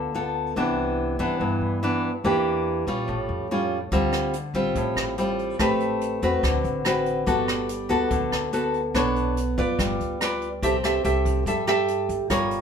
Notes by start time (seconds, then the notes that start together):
Already playing: D2 D3 B3 F4 A4
0.15 B3 F4 A4
0.56 C2 C3 E3 B3 D4
1.19 G2 E3 B3 D4
1.40 G2
1.61 G2
1.83 E3 B3 D4
2.24 E2 E3 A#3 D4 G4
2.87 A#2 G3 C#4 F4
3.08 A1 A2
3.29 F2
3.51 G3 C#4 F4
3.92 D2 D3 G3 C4 F4, kick, closed hi-hat
4.12 cross-stick, closed hi-hat
4.33 closed hi-hat
4.54 A1 G3 C4 F4, closed hi-hat
4.75 A1 A2, kick, closed hi-hat
4.96 A1, cross-stick, closed hi-hat
5.18 G3 C4 F4, closed hi-hat
5.39 closed hi-hat
5.59 A1 A3 C4 G4 B4, kick, cross-stick, closed hi-hat
5.80 closed hi-hat
6.01 closed hi-hat
6.22 E2 C4 F#4 B4, closed hi-hat
6.43 D2 D3, kick, cross-stick, closed hi-hat
6.64 A1, closed hi-hat
6.85 C4 F#4 B4, cross-stick, closed hi-hat
7.06 closed hi-hat
7.26 G1 G3 B3 F#4 A4, kick, closed hi-hat
7.48 cross-stick, closed hi-hat
7.69 closed hi-hat
7.89 D2 B3 F#4 A4, closed hi-hat
8.11 D2 D3, kick, closed hi-hat
8.32 D2, cross-stick, closed hi-hat
8.53 B3 F#4 A4, closed hi-hat
8.74 closed hi-hat
8.94 B1 B3 D4 A4 C#5, kick, cross-stick, closed hi-hat
9.16 closed hi-hat
9.37 closed hi-hat
9.58 F#2 F4 B4 D5, kick, closed hi-hat
9.79 G1 G3, kick, cross-stick, closed hi-hat
10.00 D2, closed hi-hat
10.21 F4 B4 D5, cross-stick, closed hi-hat
10.42 closed hi-hat
10.62 C2 C4 G4 A4 E5, kick, closed hi-hat
10.84 G4 A4 E5, cross-stick, closed hi-hat
11.04 C2 G4 A4 E5, closed hi-hat
11.25 kick, closed hi-hat
11.46 G2 G3 G4 A4 E5, kick, closed hi-hat
11.67 G4 A4 E5, cross-stick, closed hi-hat
11.88 closed hi-hat
12.09 G#1, closed hi-hat
12.30 G1 G3 F4 A#4 C#5, kick, cross-stick, closed hi-hat
12.51 closed hi-hat